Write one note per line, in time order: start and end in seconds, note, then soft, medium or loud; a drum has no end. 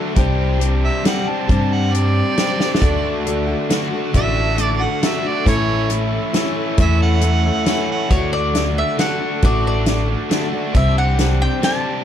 0.00 0.15 D3 medium
0.00 0.15 F#3 medium
0.00 0.16 A3 medium
0.00 0.17 D4 medium
0.00 0.17 F#4 medium
0.00 0.13 A4 medium
0.00 0.14 F#5 medium
0.00 2.77 D6 medium
0.15 0.87 C2 loud
0.15 0.60 C3 medium
0.15 0.57 G3 loud
0.15 0.58 C4 medium
0.15 0.61 D4 medium
0.15 0.61 G4 medium
0.15 2.79 C5 medium
0.15 2.79 G5 medium
0.15 kick loud
0.15 closed hi-hat medium
0.58 1.03 G3 medium
0.58 1.04 C4 medium
0.58 1.05 D4 medium
0.58 1.06 G4 medium
0.58 closed hi-hat medium
0.85 1.05 E5 loud
1.04 1.47 C3 medium
1.04 1.26 G3 medium
1.04 1.27 C4 medium
1.04 1.26 D4 medium
1.04 1.24 G4 medium
1.04 1.31 F#5 medium
1.04 snare medium
1.04 closed hi-hat medium
1.25 1.48 C4 soft
1.25 1.49 D4 soft
1.25 1.48 G4 medium
1.25 1.75 A5 medium
1.48 2.20 G2 loud
1.48 1.93 C3 medium
1.48 1.91 G3 medium
1.48 1.93 C4 medium
1.48 1.94 D4 medium
1.48 1.94 G4 medium
1.48 kick loud
1.48 closed hi-hat medium
1.73 1.96 F#5 medium
1.93 2.36 G3 medium
1.93 2.37 C4 medium
1.93 2.39 D4 medium
1.93 2.39 G4 medium
1.93 3.22 D5 loud
1.93 closed hi-hat medium
2.36 2.80 C3 medium
2.36 2.59 G3 medium
2.36 2.60 C4 medium
2.36 2.60 D4 medium
2.36 2.58 G4 medium
2.36 snare medium
2.36 closed hi-hat medium
2.59 2.82 C4 soft
2.59 2.82 D4 soft
2.59 2.81 G4 medium
2.59 snare medium
2.75 snare medium
2.81 3.52 D2 medium
2.81 3.24 D3 medium
2.81 3.26 A3 medium
2.81 3.26 D4 medium
2.81 5.42 F#4 medium
2.81 3.27 F#4 medium
2.81 5.42 A4 medium
2.81 8.07 A4 medium
2.81 5.43 D5 medium
2.81 5.44 F#5 medium
2.81 5.44 D6 medium
2.81 kick loud
2.81 closed hi-hat medium
3.25 3.48 D3 medium
3.25 3.48 A3 medium
3.25 3.48 D4 medium
3.25 3.46 F#4 medium
3.25 closed hi-hat medium
3.47 3.70 A3 soft
3.47 3.70 D4 medium
3.47 3.69 F#4 medium
3.69 3.92 D3 medium
3.69 3.93 A3 medium
3.69 3.91 D4 medium
3.69 3.89 F#4 medium
3.69 snare medium
3.69 closed hi-hat medium
3.91 4.12 A3 soft
3.91 4.13 D4 soft
3.91 4.13 F#4 medium
4.12 4.85 A1 loud
4.12 4.56 D3 medium
4.12 4.58 A3 medium
4.12 4.58 D4 medium
4.12 4.58 F#4 medium
4.12 kick loud
4.12 closed hi-hat medium
4.17 4.62 E5 loud
4.57 4.79 D3 medium
4.57 4.80 A3 medium
4.57 4.80 D4 medium
4.57 4.78 F#4 medium
4.57 closed hi-hat medium
4.62 4.84 D5 loud
4.79 5.00 A3 soft
4.79 5.02 D4 soft
4.79 5.01 F#4 medium
4.79 5.07 F#5 loud
5.00 5.23 D3 medium
5.00 5.24 A3 medium
5.00 5.24 D4 medium
5.00 5.22 F#4 medium
5.00 snare medium
5.00 closed hi-hat medium
5.05 5.30 E5 medium
5.23 5.46 A3 soft
5.23 5.47 D4 soft
5.23 5.45 F#4 medium
5.28 5.47 D5 medium
5.44 6.17 A1 loud
5.44 5.90 A2 medium
5.44 5.87 E3 medium
5.44 5.90 A3 medium
5.44 5.90 C#4 medium
5.44 7.41 E4 medium
5.44 7.41 A4 medium
5.44 7.41 C#5 medium
5.44 8.07 E5 medium
5.44 8.07 C#6 medium
5.44 kick loud
5.44 closed hi-hat medium
5.48 5.91 E4 medium
5.48 5.90 C#5 loud
5.89 6.31 E3 medium
5.89 6.33 A3 medium
5.89 6.34 C#4 medium
5.89 6.35 E4 medium
5.89 closed hi-hat medium
6.32 6.77 A2 medium
6.32 6.77 E3 medium
6.32 6.78 A3 medium
6.32 6.78 C#4 medium
6.32 6.78 E4 medium
6.32 snare medium
6.32 closed hi-hat medium
6.77 7.49 E2 loud
6.77 7.22 A2 medium
6.77 7.20 E3 medium
6.77 7.21 A3 medium
6.77 7.22 C#4 medium
6.77 7.23 E4 loud
6.77 kick loud
6.77 closed hi-hat medium
6.81 7.01 E5 loud
7.02 7.87 F#5 loud
7.21 7.44 E3 medium
7.21 7.44 A3 medium
7.21 7.44 C#4 medium
7.21 7.42 E4 medium
7.21 closed hi-hat medium
7.44 7.64 A3 soft
7.44 7.66 C#4 soft
7.44 7.66 E4 medium
7.44 8.11 E4 medium
7.44 8.11 A4 soft
7.44 8.11 E5 medium
7.65 8.09 A2 medium
7.65 8.08 E3 medium
7.65 8.07 A3 medium
7.65 8.09 C#4 medium
7.65 8.10 E4 medium
7.65 snare medium
7.65 closed hi-hat medium
7.91 8.11 F#5 loud
8.08 8.81 D2 medium
8.08 8.51 D3 medium
8.08 8.52 A3 medium
8.08 8.54 D4 medium
8.08 8.54 F#4 medium
8.08 10.72 A4 medium
8.08 8.32 C#5 medium
8.08 10.72 F#5 medium
8.08 10.71 D6 medium
8.08 kick loud
8.08 closed hi-hat medium
8.33 8.78 D5 medium
8.52 8.75 D3 medium
8.52 8.76 A3 medium
8.52 8.75 D4 medium
8.52 8.74 F#4 medium
8.52 snare medium
8.52 closed hi-hat medium
8.75 8.97 A3 soft
8.75 8.99 D4 soft
8.75 8.98 F#4 soft
8.75 8.99 E5 medium
8.97 9.20 D3 medium
8.97 9.21 A3 medium
8.97 9.20 D4 medium
8.97 9.19 F#4 medium
8.97 9.45 F#5 loud
8.97 snare medium
8.97 closed hi-hat medium
9.20 9.42 A3 soft
9.20 9.43 D4 soft
9.20 9.42 F#4 soft
9.42 10.14 A1 loud
9.42 9.86 D3 medium
9.42 9.87 A3 medium
9.42 9.90 D4 medium
9.42 9.88 F#4 medium
9.42 9.66 D5 medium
9.42 kick loud
9.42 closed hi-hat medium
9.67 10.50 D5 medium
9.86 10.09 D3 medium
9.86 10.10 A3 medium
9.86 10.09 D4 medium
9.86 snare medium
9.86 closed hi-hat medium
9.91 10.07 F#4 medium
10.08 10.30 A3 soft
10.08 10.31 D4 soft
10.08 10.31 F#4 soft
10.29 10.52 D3 medium
10.29 10.53 A3 medium
10.29 10.52 D4 medium
10.29 10.50 F#4 medium
10.29 snare medium
10.29 closed hi-hat medium
10.51 10.75 A3 soft
10.51 10.75 D4 medium
10.51 10.74 F#4 medium
10.72 11.45 C2 medium
10.72 11.19 C3 medium
10.72 11.16 G3 medium
10.72 12.04 G4 medium
10.72 12.04 C5 medium
10.72 12.04 D6 medium
10.72 kick loud
10.72 closed hi-hat medium
10.76 11.17 C4 medium
10.76 11.19 D4 medium
10.76 11.19 G4 medium
10.76 10.98 E5 medium
10.98 11.41 F#5 medium
11.17 11.40 G3 medium
11.17 11.41 C4 medium
11.17 11.41 D4 medium
11.17 11.39 G4 medium
11.17 snare medium
11.17 closed hi-hat medium
11.40 11.61 C4 soft
11.40 11.62 D4 soft
11.40 11.62 G4 soft
11.40 11.64 G5 loud
11.60 12.04 C3 medium
11.60 12.04 G3 medium
11.60 12.04 C4 medium
11.60 12.04 D4 medium
11.60 12.04 G4 medium
11.60 12.04 A5 loud
11.60 snare medium
11.60 closed hi-hat medium